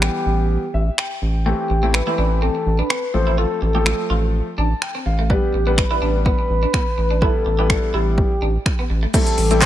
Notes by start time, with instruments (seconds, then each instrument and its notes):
0.02 grand piano E3 G3 B3 G4, soft synth lead G4, finger snap
0.26 analog synth bass A1
0.74 analog synth bass A1, grand piano E5
0.98 grand piano G5, finger snap
1.22 analog synth bass A1
1.46 grand piano E3 A3 C4 G4, clean electric guitar A3, soft synth lead G4
1.70 analog synth bass A1, muted clean electric guitar stroke
1.82 grand piano E3 A3 C4 E4, clean electric guitar C4
1.94 soft synth lead B4, finger snap, muted clean electric guitar stroke
2.07 grand piano E3 A3 C4 G4, clean electric guitar E4
2.18 analog synth bass A1, clean electric guitar D4
2.42 clean electric guitar C4, soft synth lead A4
2.55 muted clean electric guitar stroke
2.66 analog synth bass A1
2.79 clean electric guitar D4, soft synth lead B4
2.90 clean electric guitar C4, finger snap
3.14 analog synth bass A1, grand piano F3 A3 C4 A4, soft synth lead C5, muted clean electric guitar stroke
3.27 clean electric guitar E4
3.38 clean electric guitar F4, soft synth lead A4
3.62 analog synth bass A1, soft synth lead A4, muted clean electric guitar stroke
3.74 grand piano F3 A3 C4 A4, clean electric guitar G4
3.86 grand piano F3 A3 C4 A4, finger snap
4.10 analog synth bass A1, clean electric guitar F4
4.58 analog synth bass A1, clean electric guitar D4, grand piano A5
4.82 grand piano G5, finger snap
4.95 clean electric guitar C4
5.06 analog synth bass A1, grand piano F5, muted clean electric guitar stroke
5.19 clean electric guitar A3
5.30 grand piano G3 B3 D4 B4, clean electric guitar G3, soft synth lead G4, kick
5.54 analog synth bass A1, muted clean electric guitar stroke
5.66 grand piano G3 B3 D4 B4, clean electric guitar B3
5.78 soft synth lead B4, finger snap, muted clean electric guitar stroke, kick
5.90 grand piano G3 B3 D4 B4, clean electric guitar E4
6.02 analog synth bass A1, clean electric guitar D4
6.26 clean electric guitar B3, soft synth lead B4, kick
6.39 muted clean electric guitar stroke
6.50 analog synth bass A1
6.63 clean electric guitar D4
6.74 clean electric guitar B3, finger snap, kick
6.98 analog synth bass A1, muted clean electric guitar stroke
7.11 clean electric guitar D4
7.22 grand piano G3 B3 E4 B4, clean electric guitar E4, soft synth lead A4, kick
7.46 analog synth bass A1, muted clean electric guitar stroke
7.58 grand piano G3 B3 E4 B4, clean electric guitar G4
7.70 grand piano G3 B3 E4 D5, finger snap, kick
7.94 analog synth bass A1, clean electric guitar E4, soft synth lead G4
8.18 kick
8.42 analog synth bass A1, clean electric guitar D4
8.66 finger snap, kick
8.79 clean electric guitar B3
8.90 analog synth bass A1, muted clean electric guitar stroke
9.03 clean electric guitar A3
9.14 analog synth pad E3 G3 A3 C4 G4, grand piano G3 A3 C4 E4 A4, clean electric guitar A3, soft synth lead A4, kick, closed hi-hat, crash, shaker
9.27 closed hi-hat, shaker
9.38 analog synth bass A1, muted clean electric guitar stroke, open hi-hat, shaker
9.50 grand piano G3 A3 C4 E4 A4, clean electric guitar C4, closed hi-hat, shaker
9.62 soft synth lead C5, kick, clap, closed hi-hat, shaker